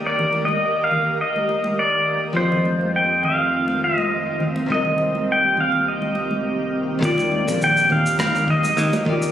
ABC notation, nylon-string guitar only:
X:1
M:4/4
L:1/8
Q:"Swing 16ths" 1/4=103
K:Eblyd
V:1 name="Nylon-string guitar"
[E,EGBf]8 | [F,CGAe]8 | [C,CEBe]8 | [E,B,FGd]4- [E,B,FGd] z2 [E,B,FGd] |]